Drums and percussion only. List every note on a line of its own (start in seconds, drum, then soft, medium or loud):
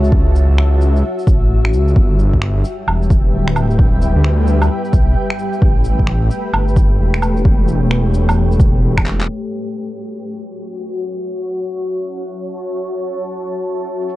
0.04 shaker soft
0.12 kick loud
0.36 shaker medium
0.58 finger snap loud
0.81 shaker soft
0.96 shaker soft
1.19 shaker soft
1.27 kick loud
1.27 shaker medium
1.65 finger snap loud
1.73 shaker medium
1.88 shaker soft
1.96 kick loud
2.19 shaker medium
2.33 kick medium
2.42 finger snap loud
2.64 shaker medium
2.88 low woodblock medium
3.02 shaker soft
3.10 kick loud
3.10 shaker soft
3.48 finger snap loud
3.56 low woodblock medium
3.56 shaker medium
3.71 shaker soft
3.79 kick loud
4.02 shaker medium
4.25 finger snap medium
4.47 shaker soft
4.62 low woodblock soft
4.62 shaker soft
4.85 shaker soft
4.93 kick loud
4.93 shaker medium
5.30 finger snap loud
5.39 shaker soft
5.53 shaker soft
5.62 kick loud
5.84 shaker medium
6.00 kick medium
6.07 finger snap loud
6.31 shaker medium
6.54 low woodblock medium
6.68 shaker soft
6.77 kick loud
6.77 shaker medium
7.14 finger snap medium
7.22 low woodblock medium
7.22 shaker medium
7.37 shaker soft
7.45 kick loud
7.68 shaker medium
7.91 finger snap loud
8.14 shaker medium
8.29 low woodblock medium
8.29 shaker soft
8.52 shaker soft
8.60 kick loud
8.60 shaker medium
8.97 finger snap loud
8.97 kick medium
8.97 low woodblock soft
9.06 clap medium
9.06 shaker medium
9.21 clap medium
9.21 shaker soft
10.35 shaker soft
10.89 shaker medium
11.35 shaker medium
11.80 shaker soft
12.18 shaker soft
12.26 shaker medium
12.72 shaker medium
12.87 shaker soft
13.18 shaker medium
13.63 shaker medium
14.01 shaker soft
14.09 shaker medium